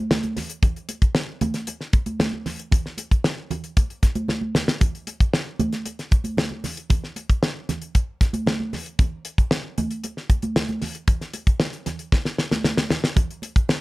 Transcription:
0.11 snare, muted conga, high conga
0.23 closed hi-hat, high conga
0.36 snare, open hi-hat, muted conga, low conga
0.50 closed hi-hat
0.62 kick, closed hi-hat, low conga
0.76 closed hi-hat
0.89 closed hi-hat, muted conga
1.02 kick, closed hi-hat
1.15 snare, muted conga
1.41 closed hi-hat, high conga, low conga
1.54 snare, closed hi-hat
1.67 closed hi-hat, muted conga
1.81 snare
1.93 kick, closed hi-hat, muted conga
2.06 closed hi-hat, high conga
2.20 snare, muted conga, high conga
2.33 high conga
2.46 snare, open hi-hat, low conga
2.59 closed hi-hat
2.71 kick, closed hi-hat, low conga
2.86 snare
2.98 closed hi-hat, muted conga
3.11 kick, closed hi-hat
3.24 snare, muted conga
3.50 closed hi-hat, low conga
3.64 closed hi-hat
3.77 kick, closed hi-hat, muted conga
3.90 closed hi-hat
4.03 kick, snare, closed hi-hat, muted conga
4.15 closed hi-hat, high conga
4.28 snare, high conga
4.41 high conga
4.55 snare, low conga
4.68 snare
4.81 kick, closed hi-hat, low conga
4.95 closed hi-hat
5.07 closed hi-hat, muted conga
5.20 kick, closed hi-hat
5.34 snare
5.59 closed hi-hat, muted conga, high conga, low conga
5.73 snare, closed hi-hat
5.86 closed hi-hat, muted conga
5.99 snare, closed hi-hat
6.11 kick, closed hi-hat, muted conga
6.24 closed hi-hat, high conga
6.37 snare, muted conga, high conga
6.51 high conga
6.64 snare, open hi-hat, muted conga, low conga
6.77 closed hi-hat
6.90 kick, closed hi-hat, muted conga, low conga
7.04 snare
7.16 closed hi-hat, muted conga
7.30 kick, closed hi-hat
7.43 snare, muted conga
7.69 snare, closed hi-hat, muted conga, low conga
7.82 closed hi-hat
7.95 kick, closed hi-hat
8.21 kick, snare, closed hi-hat
8.33 closed hi-hat, high conga
8.46 snare, high conga
8.60 high conga
8.73 snare, open hi-hat, muted conga, low conga
8.86 closed hi-hat
8.99 kick, closed hi-hat, muted conga, low conga
9.25 closed hi-hat
9.38 kick, closed hi-hat
9.51 snare, muted conga
9.78 closed hi-hat, muted conga, high conga, low conga
9.91 closed hi-hat
10.04 closed hi-hat, muted conga
10.17 snare
10.30 kick, closed hi-hat, muted conga
10.42 closed hi-hat, high conga
10.56 snare, muted conga, high conga
10.68 closed hi-hat, high conga
10.81 snare, open hi-hat, muted conga, low conga
10.95 closed hi-hat
11.08 kick, closed hi-hat, low conga
11.21 snare, closed hi-hat
11.34 closed hi-hat, muted conga
11.47 kick, closed hi-hat
11.60 snare, muted conga
11.73 closed hi-hat
11.86 snare, closed hi-hat, low conga
11.99 closed hi-hat
12.12 kick, snare, muted conga
12.25 snare
12.38 snare, muted conga
12.51 snare, high conga
12.64 snare, muted conga, high conga
12.77 snare, high conga
12.90 snare, muted conga, low conga
13.04 snare
13.16 kick, closed hi-hat, low conga
13.31 closed hi-hat
13.42 closed hi-hat, muted conga
13.56 kick, closed hi-hat
13.69 snare, muted conga

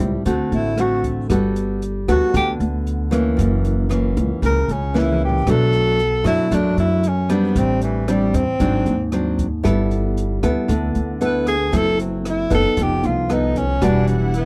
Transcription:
Already playing: A2 G3 C4 E4
0.00 C#2, kick, closed hi-hat
0.25 D2 D3 A3 C4 F#4, kick, closed hi-hat
0.52 A1 E4, closed hi-hat
0.78 A3 C4 F#4, cross-stick, closed hi-hat
1.04 kick, closed hi-hat
1.30 G1 G3 B3 F#4 A4, kick, cross-stick, closed hi-hat
1.56 closed hi-hat
1.82 closed hi-hat
2.08 D2 B3 F#4 A4, cross-stick, closed hi-hat
2.34 D2 D3 G4, kick, closed hi-hat
2.60 D2, closed hi-hat
2.87 closed hi-hat
3.11 E3 A#3 C#4, cross-stick, closed hi-hat
3.37 F#1 F#2, kick, closed hi-hat
3.65 closed hi-hat
3.89 E3 A#3 C#4, cross-stick, closed hi-hat
4.16 C#2, kick, closed hi-hat
4.42 C#2 C#3 A#4, kick, closed hi-hat
4.68 C#2 C#4, closed hi-hat
4.94 E3 A#3 C#4, snare
4.99 E4
5.13 mid tom
5.25 G4, floor tom
5.47 B1 B2 F#3 A3 D4 A4, kick, cross-stick, closed hi-hat
5.73 closed hi-hat
5.99 closed hi-hat
6.24 F#2 F#3 A3 D4 E4, cross-stick, closed hi-hat
6.51 F#2 F#3 A3 D4, kick, closed hi-hat
6.77 F#2 E4, closed hi-hat
7.03 closed hi-hat
7.08 C#4
7.29 G3 B3 C4 D4, cross-stick, closed hi-hat
7.55 A1 A2 C4, kick, closed hi-hat
7.81 E3, closed hi-hat
8.08 G3 C4 D4, cross-stick, closed hi-hat
8.34 E2 C4, kick, closed hi-hat
8.60 G#1 G#2 F#3 C4 D4, kick, closed hi-hat
8.86 D#2, closed hi-hat
9.12 F#3 C4 D4, cross-stick, closed hi-hat
9.39 kick, closed hi-hat
9.63 G1 G3 B3 E4 A4, kick, cross-stick, closed hi-hat
9.91 closed hi-hat
10.17 closed hi-hat
10.43 D2 B3 E4 A4, cross-stick, closed hi-hat
10.68 D2 D3, kick, closed hi-hat
10.95 D2, closed hi-hat
11.21 B3 E4 A4, closed hi-hat
11.25 B4
11.47 G#4, cross-stick, closed hi-hat
11.72 F#1 F#3 C4 E4 A4, kick, closed hi-hat
11.77 A4
11.99 C4, closed hi-hat
12.25 cross-stick, closed hi-hat
12.30 E4
12.50 F#1 B3 D#4 A4, kick, closed hi-hat
12.55 A4
12.77 F1 F3, kick, closed hi-hat
12.82 G4
13.03 C2 F4, closed hi-hat
13.29 B3 D#4 A4, cross-stick, closed hi-hat
13.56 C#4, kick, closed hi-hat
13.81 E1 E3 G3 D4 E4 F#4 F#5, kick, cross-stick, closed hi-hat
14.07 F#3, closed hi-hat
14.34 B3, closed hi-hat

